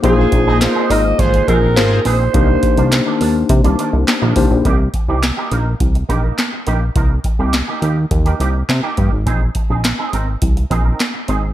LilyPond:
<<
  \new Staff \with { instrumentName = "Alto saxophone" } { \time 4/4 \key c \minor \tempo 4 = 104 aes'4 c''8 ees''8 c''8 bes'4 c''8~ | c''4. r2 r8 | r1 | r1 |
r1 | }
  \new Staff \with { instrumentName = "Analog polysynth" } { \time 4/4 \key c \minor r16 <f' aes' c''>16 r16 <aes' c'' ees''>16 <ees' f' bes'>8 r8 <f' aes' c''>8 r8 <f' aes' c''>8 r8 | r1 | r1 | r1 |
r1 | }
  \new Staff \with { instrumentName = "Clean electric guitar" } { \time 4/4 \key c \minor <c' ees' aes'>16 r8 <c' ees' aes'>16 r16 <c' ees' aes'>16 <c' ees' bes'>16 r8. <c' ees' aes'>16 <c' ees' bes'>16 r8 <c' ees' aes'>16 r16 | <ees bes ees'>16 r8 <ees bes d'>16 r16 <ees bes d'>16 <ees bes d'>16 r8 <ees bes d'>16 <ees bes d'>16 r8 <ees bes d'>16 <ees bes d'>16 r16 | <bes ees' g'>16 r8 <bes ees' g'>16 r16 <bes ees' g'>16 <bes ees' bes'>16 r8. <bes ees' g'>16 <bes ees' bes'>16 r8 <bes ees' g'>16 r16 | <bes ees' bes'>16 r8 <bes ees' g'>16 r16 <bes ees' g'>16 <bes ees' g'>16 r8 <bes ees' g'>16 <bes ees' g'>16 r8 <bes ees' g'>16 <bes ees' g'>16 r16 |
<c' ees' aes'>16 r8 <c' ees' aes'>16 r16 <c' ees' aes'>16 <c' ees' bes'>16 r8. <c' ees' aes'>16 <c' ees' bes'>16 r8 <c' ees' aes'>16 r16 | }
  \new Staff \with { instrumentName = "Tine electric piano" } { \time 4/4 \key c \minor <bes ees' f' aes' c''>1 | <bes d' ees' g' c''>2.~ <bes d' ees' g' c''>8 <bes d' ees' g' c''>8 | r1 | r1 |
r1 | }
  \new Staff \with { instrumentName = "Analog synth bass" } { \clef bass \time 4/4 \key c \minor bes,,8 bes,,8. r16 aes,,8 aes,,8 bes,,8 aes,,8 bes,,8 | c,8 r16 c,8 r16 ees,8 c16 c,16 r16 c,16 r16 bes,,16 c,16 bes,,16 | c,8 r16 c,8 r16 bes,,8 c,8 bes,,8 r8 bes,,8 | c,8 r16 c,8 r16 ees,8 ees,8 c,8 c16 r16 g,16 aes,,16 |
bes,,8 r16 bes,,8 r16 aes,,8 c,8 bes,,8 r8 aes,,8 | }
  \new DrumStaff \with { instrumentName = "Drums" } \drummode { \time 4/4 <hh bd>8 <hh bd>8 <hc hh sn>8 hho8 <hh bd>16 hh16 <hh bd>8 <hc hh sn>8 hho8 | <hh bd>8 <hh bd>16 hh16 <hc hh sn>8 hho8 <hh bd>16 hh16 hh8 <hc hh sn>8 <hho bd>8 | <hh bd>8 <hh bd>8 <hc hh sn>8 hh8 <hh bd>16 hh16 <hh bd>8 <hc hh sn>8 hh8 | <hh bd>8 <hh bd>8 <hc hh sn>8 hh8 <hh bd>16 hh16 hh8 <hc hh sn>8 <hh bd>8 |
<hh bd>8 <hh bd>8 <hc hh sn>8 hh8 <hh bd>16 hh16 <hh bd>8 <hc hh sn>8 hh8 | }
>>